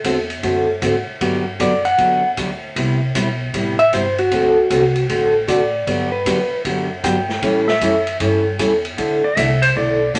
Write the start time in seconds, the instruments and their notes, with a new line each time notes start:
0.04 upright bass E2, steel-string acoustic guitar D3 A3 C4 F#4 A4, kick, hi-hat pedal, ride
0.30 ride
0.43 upright bass F#2, steel-string acoustic guitar D3 A3 C4 F#4 A4, kick, ride
0.81 upright bass G#2, steel-string acoustic guitar D3 A3 C4 F#4 A4, kick, hi-hat pedal, ride
1.07 muted upright bass stroke
1.21 upright bass G2, steel-string acoustic guitar D3 F#3 B3 D4 G4, kick, ride
1.59 upright bass F#2, steel-string acoustic guitar D3 F#3 B3 D4 G4, electric slide guitar D5, kick, hi-hat pedal, ride
1.85 electric slide guitar F#5, ride
1.98 upright bass E2, steel-string acoustic guitar D3 F#3 B3 D4 G4, kick, ride
2.37 upright bass D2, steel-string acoustic guitar D3 F#3 B3 D4 G4, kick, hi-hat pedal, ride
2.76 upright bass C2, steel-string acoustic guitar C3 G3 B3 E4 G4, kick, ride
3.15 upright bass B1, steel-string acoustic guitar C3 G3 B3 E4 G4, kick, hi-hat pedal, ride
3.54 upright bass A1, steel-string acoustic guitar C3 G3 B3 E4 G4, kick, ride
3.79 electric slide guitar E5, ride
3.92 upright bass G1, steel-string acoustic guitar C3 G3 B3 E4 G4, electric slide guitar C5, kick, hi-hat pedal, ride
4.18 electric slide guitar F#4, ride
4.31 upright bass D2, steel-string acoustic guitar D3 A3 C4 F#4 A4, kick, ride
4.70 upright bass C2, steel-string acoustic guitar D3 A3 C4 F#4 A4, kick, hi-hat pedal, ride
4.95 ride
5.09 upright bass A1, steel-string acoustic guitar D3 A3 C4 F#4 A4, kick, ride
5.47 upright bass A2, steel-string acoustic guitar D3 A3 C4 F#4 A4, electric slide guitar D5, kick, hi-hat pedal, ride
5.86 upright bass G2, steel-string acoustic guitar D3 F#3 B3 D4 G4, kick, ride
6.12 electric slide guitar B4
6.26 upright bass E2, steel-string acoustic guitar D3 F#3 B3 D4 G4, kick, hi-hat pedal, ride
6.51 muted upright bass stroke
6.65 upright bass F#2, steel-string acoustic guitar D3 F#3 B3 D4 G4, kick, ride
7.04 upright bass G2, steel-string acoustic guitar D3 F#3 B3 D4 G4, electric slide guitar G5, kick, hi-hat pedal, ride
7.29 snare
7.42 upright bass A2, steel-string acoustic guitar E3 G3 C#4 E4 A4, kick, ride
7.68 electric slide guitar E5, snare
7.81 upright bass F#2, steel-string acoustic guitar E3 G3 C#4 E4 A4, kick, hi-hat pedal, ride
8.07 ride
8.20 upright bass G2, steel-string acoustic guitar E3 G3 C#4 E4 A4, kick, ride
8.59 upright bass E2, steel-string acoustic guitar E3 G3 C#4 E4 A4, kick, hi-hat pedal, ride
8.85 ride
8.97 upright bass D2, steel-string acoustic guitar D3 A3 D4 E4 A4, kick, ride
9.24 electric slide guitar D5
9.36 upright bass C2, steel-string acoustic guitar D3 A3 D4 E4 A4, electric slide guitar E5, kick, hi-hat pedal, ride
9.62 electric slide guitar C5, ride
9.75 upright bass B1, steel-string acoustic guitar D3 A3 D4 E4 A4, electric slide guitar D5, kick
10.14 upright bass A1, steel-string acoustic guitar D3 A3 D4 E4 A4, electric slide guitar A4, kick, hi-hat pedal, ride